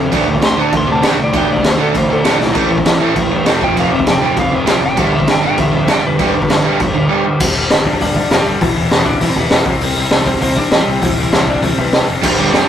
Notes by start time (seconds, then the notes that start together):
Already playing: D2 A4
0.00 F2 C3
0.12 D2 D3 A3 D4, kick, crash
0.28 D3 A3
0.35 kick
0.42 D2 D3 A3 C6, snare, crash
0.57 D2 D3 A3 D4
0.62 A5
0.72 D2 D3 A3, kick, crash
0.77 C6
0.88 C3 D3 A3
0.92 A5
1.03 D2 D3 A3 D4, snare, crash
1.07 G5
1.18 C2 D3 A3
1.24 D5
1.33 D2 D3 A3 D4, kick, crash
1.37 G5
1.48 D2 D3 A3
1.53 D5, kick
1.63 D2 D3 A3, snare, crash
1.67 C5
1.78 D2 D3 A3 D4
1.83 A4
1.94 D2 D3 A3 C5, kick, crash
2.09 D2 D3 A3
2.13 A4
2.23 A2 D3 A3 D4 G4, snare, crash
2.38 B1 D3 A3, snare
2.43 E4
2.55 A1 A2 E3 A3, kick, crash
2.70 A2 E3
2.78 kick
2.85 A1 A2 E3, snare, crash
3.00 A1 A2 E3 A3
3.15 A1 A2 E3, kick, crash
3.30 G2 A2 E3
3.45 E1 A2 E3 A3, snare, crash
3.61 F1 F2 C3 F3 G5, kick
3.75 F1 F2 C3 F3 F5, crash
3.90 F1 F2 C3
3.95 E5
3.99 kick
4.06 F1 F2 C3, snare, crash
4.10 G5
4.20 F1 F2 C3 F3
4.26 G5
4.37 F1 F2 C3 F5, kick, crash
4.52 F1 F2 C3 E5
4.67 C2 F2 C3 F3 G5, snare, crash
4.82 F#1 F2 C3 G5
4.97 G1 G2 D3 G3 E5, kick, crash
5.15 G2 D3 E5
5.20 kick
5.27 G1 G2 D3 G5, snare, crash
5.43 G1 G2 D3 G3 G5
5.58 G1 G2 D3 E5, kick, crash
5.73 F2 G2 D3 E5
5.88 G1 G2 D3 G3, snare, crash
5.92 G5
6.04 F1 G2 D3 B4
6.19 G1 G2 D3 G3, kick, crash
6.34 G1 G2 D3
6.42 kick
6.49 G1 G2 D3, snare, crash
6.63 G1 G2 D3 G3
6.79 G1 G2 D3, kick, crash
6.94 G1 G2 D3
7.09 G2 D3 G3
7.25 G2 D3
7.40 G1 G2 D3 G3, kick, crash
7.55 G1 G2 D3 G3
7.70 G1 G2 D3 G3, snare, open hi-hat
7.85 G2 D3 G3 D4 D5, kick
7.93 kick
8.00 G1 G2 D3 G3 D4 D5, kick, open hi-hat
8.16 G2 D3 G3, kick
8.31 F1 G2 D3 F3 G3 F4, snare, open hi-hat
8.38 G3 G4
8.46 G1 G2 D3 G3
8.61 E1 E2 B2 E3 E4, kick, open hi-hat
8.76 E1 E2 B2 E3 E4
8.91 E1 E2 B2 E3, snare, open hi-hat
9.06 E2 B2 E3 D4 D5, kick
9.14 kick
9.21 E1 E2 B2 E3 E4, kick, open hi-hat
9.29 C4 C5
9.36 E1 E2 B2 E3 B3 B4, kick
9.50 E1 E2 B2 E3, snare, open hi-hat
9.66 C2 C3 G3 C4, kick
9.81 C2 C3 G3 C4, open hi-hat
9.96 C2 C3 G3 C4
10.11 C2 C3 G3 C4, snare, open hi-hat
10.26 C3 G3 C4 C5, kick
10.34 kick
10.41 C2 C3 G3 C4 C5, kick, open hi-hat
10.56 C3 G3 C4 D4 D5, kick
10.71 A1 C3 E3 G3 C4 E4, snare, open hi-hat
10.80 G3 G4
10.87 C2 C3 G3 C4
11.01 C2 C3 E3 G3 C4 E4, kick, open hi-hat
11.17 C2 C3 E3 G3 C4 E4
11.32 C2 C3 G3 C4, snare, open hi-hat
11.47 C3 G3 C4 D4 D5, kick
11.55 kick
11.62 C2 C3 E3 G3 C4 E4, kick, open hi-hat
11.72 C4 C5
11.77 C2 C3 G3 B3 C4 B4, kick
11.92 C2 C3 G3 C4, snare, open hi-hat
12.07 F1 C3 G3 C4
12.22 G1 G2 D3 G3 G4, kick, crash
12.38 G1 G2 D3 G3
12.52 G1 G2 D3 G3 G4, snare, open hi-hat